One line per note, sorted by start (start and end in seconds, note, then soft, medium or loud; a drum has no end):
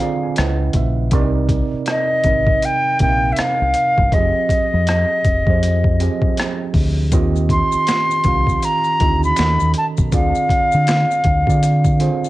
0.00 0.39 D3 medium
0.00 0.39 C4 medium
0.00 0.40 F4 medium
0.00 0.02 G#4 medium
0.00 0.38 G#4 medium
0.00 0.39 C5 medium
0.00 0.03 D5 medium
0.00 0.39 D5 medium
0.00 0.34 F5 medium
0.00 0.22 A#5 medium
0.23 0.37 G#5 medium
0.36 0.68 C#2 medium
0.36 1.01 C#3 medium
0.36 1.02 C#4 medium
0.36 1.02 E4 medium
0.36 1.02 B4 medium
0.36 1.02 D#5 medium
0.36 0.73 F#5 medium
0.36 cross-stick loud
0.36 closed hi-hat medium
0.73 1.13 A#1 medium
0.73 1.11 E5 medium
0.73 kick medium
0.73 closed hi-hat medium
1.11 1.61 C2 loud
1.11 2.07 C3 loud
1.11 2.07 C4 medium
1.11 1.21 D4 medium
1.11 2.08 A#4 medium
1.11 2.08 D5 loud
1.11 kick loud
1.11 closed hi-hat medium
1.20 2.11 D#4 medium
1.49 kick medium
1.49 closed hi-hat medium
1.74 muted fingered electric bass stroke soft
1.86 cross-stick loud
1.86 closed hi-hat medium
1.91 2.67 D#5 medium
2.24 2.55 G#1 medium
2.24 2.89 C3 medium
2.24 2.89 C4 medium
2.24 2.90 D#4 medium
2.24 2.90 A#4 medium
2.24 kick medium
2.24 closed hi-hat medium
2.28 2.90 D#5 medium
2.47 kick medium
2.62 3.01 G5 loud
2.62 closed hi-hat medium
2.99 3.31 A#1 medium
2.99 3.95 C3 medium
2.99 3.95 C4 medium
2.99 3.95 D#4 medium
2.99 3.96 A#4 medium
2.99 3.09 E5 medium
2.99 3.34 G5 loud
2.99 kick medium
2.99 closed hi-hat medium
3.09 3.99 F5 medium
3.32 3.42 E5 medium
3.32 closed hi-hat medium
3.39 4.15 F5 medium
3.39 muted fingered electric bass stroke soft
3.39 cross-stick loud
3.62 3.73 C2 medium
3.74 closed hi-hat medium
3.98 4.10 G1 medium
3.98 kick medium
4.12 4.31 F1 medium
4.12 5.20 F3 medium
4.12 5.20 C4 medium
4.12 5.21 G4 medium
4.12 5.21 G#4 medium
4.12 6.38 D#5 medium
4.12 5.21 D#5 medium
4.12 kick loud
4.12 closed hi-hat medium
4.49 muted fingered electric bass stroke soft
4.49 kick medium
4.49 closed hi-hat medium
4.74 5.04 F2 medium
4.87 cross-stick medium
4.87 closed hi-hat medium
5.24 5.44 F1 medium
5.24 kick medium
5.24 closed hi-hat medium
5.47 6.08 F2 medium
5.47 5.91 F3 medium
5.47 5.92 C4 medium
5.47 5.92 G4 medium
5.47 5.93 G#4 medium
5.47 5.93 C5 medium
5.47 kick medium
5.63 closed hi-hat medium
5.84 kick medium
6.00 6.94 F3 medium
6.00 6.95 C4 medium
6.00 6.95 G4 medium
6.00 6.95 G#4 medium
6.00 6.96 D#5 medium
6.00 closed hi-hat medium
6.22 kick medium
6.37 cross-stick loud
6.37 closed hi-hat medium
6.74 7.13 D2 medium
6.74 kick medium
6.74 open hi-hat soft
7.12 7.61 D#2 medium
7.12 8.07 D#3 loud
7.12 8.07 C4 medium
7.12 8.08 F4 medium
7.12 8.08 G4 medium
7.12 8.08 D#5 loud
7.12 kick loud
7.12 closed hi-hat medium
7.12 maracas medium
7.36 maracas soft
7.49 8.66 C6 loud
7.49 kick medium
7.49 closed hi-hat medium
7.72 muted fingered electric bass stroke soft
7.72 maracas soft
7.87 finger snap medium
7.87 snare loud
7.87 closed hi-hat medium
7.87 maracas medium
8.11 maracas soft
8.24 8.56 C2 medium
8.24 8.89 D#3 medium
8.24 8.89 C4 medium
8.24 8.90 F4 medium
8.24 8.90 G4 medium
8.24 8.90 F5 medium
8.24 kick medium
8.24 closed hi-hat medium
8.47 kick medium
8.47 maracas soft
8.63 9.24 A#5 loud
8.63 closed hi-hat medium
8.63 maracas medium
8.84 maracas soft
9.00 9.31 D2 medium
9.00 9.38 C4 medium
9.00 9.38 D#4 medium
9.00 9.38 F4 medium
9.00 9.38 G4 medium
9.00 9.39 D#5 medium
9.00 kick medium
9.00 closed hi-hat medium
9.23 9.72 B5 medium
9.23 maracas soft
9.36 9.57 D#2 medium
9.36 10.01 D#3 medium
9.36 10.02 C#4 medium
9.36 10.02 F#4 medium
9.36 10.02 A4 medium
9.36 10.03 D#5 medium
9.36 finger snap medium
9.36 snare loud
9.36 closed hi-hat medium
9.36 maracas medium
9.60 9.73 D#2 medium
9.60 maracas soft
9.74 closed hi-hat medium
9.78 9.86 A5 medium
9.97 10.10 B1 medium
9.97 kick medium
9.97 maracas soft
10.11 10.31 D2 loud
10.11 11.19 D3 medium
10.11 11.20 C4 medium
10.11 11.20 F4 medium
10.11 11.20 G#4 medium
10.11 11.21 D5 medium
10.11 12.29 F5 medium
10.11 kick loud
10.11 closed hi-hat medium
10.11 maracas medium
10.35 maracas soft
10.49 muted fingered electric bass stroke soft
10.49 kick medium
10.49 closed hi-hat medium
10.72 11.04 D3 medium
10.72 maracas soft
10.87 finger snap medium
10.87 snare loud
10.87 closed hi-hat medium
10.87 maracas medium
11.11 maracas soft
11.24 11.44 D2 medium
11.24 kick medium
11.24 closed hi-hat soft
11.47 11.91 D3 medium
11.47 12.08 D3 medium
11.47 11.91 C4 medium
11.47 11.92 F4 medium
11.47 11.92 G#4 medium
11.47 11.92 D5 medium
11.47 kick medium
11.47 maracas soft
11.63 closed hi-hat medium
11.63 maracas medium
11.84 kick medium
11.84 maracas soft
11.99 12.29 D3 medium
11.99 12.29 C4 medium
11.99 12.29 F4 medium
11.99 12.29 G#4 medium
11.99 12.29 C5 medium
11.99 closed hi-hat medium
12.24 maracas soft